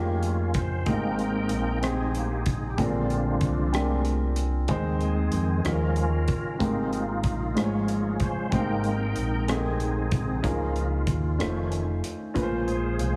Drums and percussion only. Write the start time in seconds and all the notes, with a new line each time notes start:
0.23 closed hi-hat
0.54 kick, closed hi-hat
0.86 kick, closed hi-hat
1.19 closed hi-hat
1.49 closed hi-hat
1.83 cross-stick, closed hi-hat
2.15 closed hi-hat
2.46 kick, closed hi-hat
2.78 kick, closed hi-hat
3.10 closed hi-hat
3.41 kick, closed hi-hat
3.74 cross-stick, closed hi-hat
4.05 closed hi-hat
4.36 closed hi-hat
4.68 kick, closed hi-hat
5.01 closed hi-hat
5.32 closed hi-hat
5.65 cross-stick, closed hi-hat
5.96 closed hi-hat
6.28 kick, closed hi-hat
6.60 kick, closed hi-hat
6.93 closed hi-hat
7.24 kick, closed hi-hat
7.57 cross-stick, closed hi-hat
7.88 closed hi-hat
8.20 kick, closed hi-hat
8.52 kick, closed hi-hat
8.84 closed hi-hat
9.16 closed hi-hat
9.48 cross-stick, closed hi-hat
9.80 closed hi-hat
10.11 kick, closed hi-hat
10.44 kick, closed hi-hat
10.76 closed hi-hat
11.07 kick, closed hi-hat
11.40 cross-stick, closed hi-hat
11.72 closed hi-hat
12.04 closed hi-hat
12.36 kick, closed hi-hat
12.68 closed hi-hat
12.99 closed hi-hat